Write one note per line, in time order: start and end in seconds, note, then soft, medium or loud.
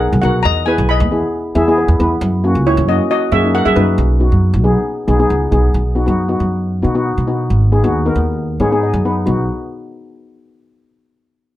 0.00 0.10 B1 medium
0.00 0.10 B3 medium
0.00 0.10 D#4 medium
0.00 0.10 G#4 medium
0.00 0.22 A#4 medium
0.00 0.20 F#5 loud
0.13 0.23 B1 medium
0.22 0.44 B1 medium
0.22 0.45 B3 medium
0.22 0.45 D#4 medium
0.22 0.45 F#4 medium
0.22 0.45 A#4 medium
0.22 0.45 F#5 medium
0.43 0.76 E2 loud
0.43 0.66 D#5 medium
0.43 0.67 A#5 loud
0.66 0.94 B3 medium
0.66 0.94 E4 medium
0.66 0.94 G#4 medium
0.66 0.88 B4 medium
0.66 0.87 G#5 loud
0.78 1.02 B1 medium
0.89 1.52 D#5 medium
0.89 1.51 B5 loud
1.00 1.21 E2 loud
1.11 1.38 B3 medium
1.11 1.38 E4 medium
1.11 1.38 G#4 medium
1.55 1.86 E2 medium
1.55 1.63 B3 medium
1.55 1.63 E4 medium
1.55 1.63 G#4 loud
1.55 1.66 E5 medium
1.68 1.87 B3 medium
1.68 1.87 E4 medium
1.68 1.88 G#4 loud
1.68 1.77 D#5 medium
1.78 1.99 B4 medium
1.88 1.99 E2 medium
1.99 2.20 E2 loud
1.99 2.22 B3 medium
1.99 2.22 E4 medium
1.99 2.22 B4 loud
2.21 2.53 F#2 loud
2.44 2.70 A#3 medium
2.44 2.71 C#4 medium
2.44 2.71 F#4 loud
2.55 2.79 C#2 medium
2.67 2.87 E4 medium
2.67 2.89 C#5 loud
2.77 2.98 F#2 loud
2.88 3.15 A#3 medium
2.88 3.14 C#4 medium
2.88 3.15 F#4 medium
2.88 3.09 F#4 medium
2.88 3.09 D#5 medium
3.11 3.31 F#4 medium
3.11 3.33 D#5 loud
3.32 3.63 F#2 medium
3.32 3.39 A#3 medium
3.32 3.39 C#4 medium
3.32 3.39 F#4 medium
3.32 3.53 G#4 medium
3.32 3.53 E5 loud
3.44 3.63 A#3 medium
3.44 3.64 C#4 medium
3.44 3.64 D#4 medium
3.55 3.65 A#4 medium
3.55 3.66 F#5 loud
3.65 3.75 F#2 medium
3.65 3.75 G#4 medium
3.65 3.76 E5 loud
3.76 3.96 F#2 loud
3.76 3.98 A#3 medium
3.76 3.98 C#4 medium
3.76 5.26 D#4 medium
3.76 3.98 F#4 medium
3.76 5.26 B4 medium
3.98 4.29 B1 loud
4.20 4.46 B3 medium
4.20 4.47 D#4 medium
4.20 4.47 F#4 medium
4.32 4.55 F#2 medium
4.53 4.74 B1 loud
4.64 4.90 B3 medium
4.64 4.90 D#4 medium
4.64 4.91 G#4 loud
5.08 5.28 B1 medium
5.08 5.15 B3 medium
5.08 5.15 D#4 medium
5.08 5.15 G#4 loud
5.20 5.39 B3 medium
5.20 5.39 D#4 medium
5.20 5.39 G#4 loud
5.30 5.50 C#2 medium
5.52 5.72 B1 medium
5.52 5.74 B3 medium
5.52 5.74 D#4 medium
5.52 5.74 G#4 medium
5.74 6.05 B1 medium
5.95 6.02 B3 medium
5.95 6.03 D#4 medium
5.95 6.03 F#4 medium
6.06 6.38 F#2 medium
6.06 6.20 B3 medium
6.06 6.20 D#4 medium
6.06 6.20 F#4 medium
6.29 6.62 B3 medium
6.29 6.62 D#4 medium
6.29 6.62 F#4 medium
6.40 6.81 F#2 medium
6.82 7.15 B2 medium
6.82 6.90 B3 medium
6.82 6.90 D#4 medium
6.82 6.90 F#4 medium
6.95 7.15 B3 medium
6.95 7.15 D#4 medium
6.95 7.15 F#4 medium
7.18 7.48 B2 medium
7.27 7.50 B3 medium
7.27 7.50 D#4 medium
7.27 7.50 F#4 medium
7.50 7.81 G#1 medium
7.72 7.79 B3 medium
7.72 7.79 D#4 medium
7.72 7.79 G#4 loud
7.84 8.14 D#2 medium
7.84 7.97 B3 medium
7.84 7.97 D#4 medium
7.84 7.97 F#4 loud
8.05 8.38 B3 medium
8.05 8.38 D#4 medium
8.05 8.38 A#4 medium
8.15 8.57 D#2 medium
8.60 8.91 G#2 medium
8.60 8.67 B3 medium
8.60 8.67 D#4 medium
8.60 8.67 G#4 loud
8.60 8.81 C#5 medium
8.72 8.92 B3 medium
8.72 8.92 D#4 medium
8.72 8.92 G#4 loud
8.83 9.03 D#5 medium
8.93 9.24 F#2 medium
9.05 9.25 B3 medium
9.05 9.25 D#4 medium
9.05 9.27 B4 medium
9.05 9.25 F#5 medium
9.26 9.47 B1 medium
9.26 9.47 B3 medium
9.26 9.47 D#4 medium
9.26 9.47 F#4 medium